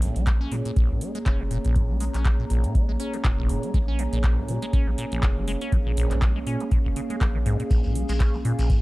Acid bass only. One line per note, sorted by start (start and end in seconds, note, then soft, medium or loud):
0.02 0.18 A#2 medium
0.16 0.25 G#3 medium
0.27 0.32 G#3 medium
0.41 0.53 C#4 medium
0.52 0.56 D#3 medium
0.66 0.72 A#2 medium
0.77 0.92 A#1 loud
0.90 1.03 A#2 medium
1.01 1.13 G#3 medium
1.15 1.19 G#3 medium
1.26 1.41 C#4 medium
1.40 1.44 D#3 medium
1.51 1.59 A#2 medium
1.65 1.77 A#1 loud
1.76 1.91 A#2 medium
1.90 1.99 G#3 medium
2.00 2.05 G#3 medium
2.14 2.27 C#4 medium
2.25 2.30 D#3 medium
2.39 2.45 A#2 medium
2.50 2.65 A#1 loud
2.64 2.76 A#2 medium
2.75 2.86 G#3 medium
2.89 2.92 G#3 medium
3.00 3.15 C#4 medium
3.14 3.17 D#3 medium
3.25 3.32 A#2 medium
3.39 3.51 A#1 loud
3.49 3.65 A#2 medium
3.63 3.72 G#3 medium
3.74 3.79 G#3 medium
3.88 4.01 C#4 medium
3.99 4.04 D#3 medium
4.13 4.19 A#2 medium
4.24 4.39 A#1 loud
4.38 4.50 A#2 medium
4.49 4.60 G#3 medium
4.62 4.66 G#3 medium
4.73 4.89 C#4 medium
4.87 4.91 D#3 medium
4.98 5.06 A#2 medium
5.12 5.24 A#1 medium
5.23 5.38 A#2 medium
5.37 5.46 G#3 medium
5.48 5.52 G#3 medium
5.62 5.74 C#4 medium
5.73 5.77 D#3 medium
5.86 5.92 A#2 medium
5.97 6.13 A#1 loud
6.11 6.24 A#2 medium
6.22 6.33 G#3 medium
6.36 6.39 G#3 medium
6.47 6.62 C#4 medium
6.61 6.64 D#3 medium
6.72 6.79 A#2 medium
6.85 6.89 A#1 loud
6.96 7.01 C#3 medium
7.10 7.16 G#3 medium
7.21 7.26 A#3 medium
7.35 7.39 D#3 medium
7.46 7.57 G#2 loud
7.60 7.63 A#2 medium
7.71 7.86 A#1 medium
7.84 7.97 A#2 medium
7.95 8.07 G#3 medium
8.09 8.13 G#3 medium
8.20 8.36 C#4 medium
8.34 8.38 D#3 medium
8.45 8.53 A#2 medium
8.59 8.71 A#1 loud
8.70 8.82 A#2 medium